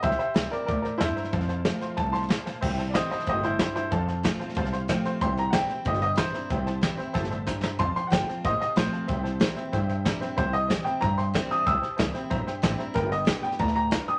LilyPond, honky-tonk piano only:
\new Staff \with { instrumentName = "Honky-tonk piano" } { \time 4/4 \key c \mixolydian \tempo 4 = 186 <c'' e'' g''>8 <c'' e'' g''>8 <c'' e'' g''>8 <c'' e'' g''>8 <c'' e'' bes''>8 <c'' e'' bes''>8 <c'' e'' a''>8 <c'' e'' bes''>8 | <c'' f'' a''>8 <c'' f'' a''>8 <c'' f'' a''>8 <c'' f'' c'''>8 <c'' f'' a''>8 <c'' f'' a''>8 <c'' f'' a''>8 <c'' f'' a''>8 | <c'' e'' g''>8 <c'' e'' a''>8 <c'' e'' g''>8 <c'' e'' a''>8 <c'' e'' g''>8 <c'' e'' a''>8 <c'' e'' g''>8 <c'' e'' a''>8 | <c'' f'' a''>8 <c'' f'' a''>8 <c'' f'' a''>8 <c'' f'' a''>8 <c'' f'' a''>8 <c'' f'' c'''>8 <c'' f'' g''>8 <c'' f'' c'''>8 |
<c'' e'' g''>8 <c'' e'' g''>8 <c'' e'' bes''>8 <c'' e'' g''>8 <c'' e'' g''>8 <c'' e'' g''>8 <c'' e'' bes''>8 <c'' e'' bes''>8 | <c'' e'' g''>8 <c'' e'' a''>8 <c'' e'' g''>8 <c'' e'' g''>8 <c'' e'' a''>8 <c'' e'' a''>8 <c'' e'' bes''>8 <c'' e'' bes''>8 | <c'' f'' a''>8 <c'' f'' g''>8 <c'' f'' g''>8 <c'' f'' a''>8 <c'' f'' c'''>8 <c'' f'' a''>8 <c'' f'' c'''>8 <c'' f'' a''>8 | <c'' e'' g''>8 <c'' e'' a''>8 <c'' e'' bes''>8 <c'' e'' g''>8 <c'' e'' g''>8 <c'' e'' g''>8 <c'' e'' bes''>8 <c'' e'' g''>8 |
<c'' e'' g''>8 <c'' e'' a''>8 <c'' e'' g''>8 <c'' e'' a''>8 <c'' e'' g''>8 <c'' e'' g''>8 <c'' e'' g''>8 <c'' e'' a''>8 | <c'' e'' g''>8 <c'' e'' a''>8 <c'' e'' a''>8 <c'' e'' g''>8 <c'' e'' bes''>8 <c'' e'' g''>8 <c'' e'' g''>8 <c'' e'' bes''>8 | <b' d'' g''>8 <b' d'' g''>8 <b' d'' g''>8 <b' d'' g''>8 <b' d'' a''>8 <b' d'' g''>8 <b' d'' f''>8 <b' d'' g''>8 | }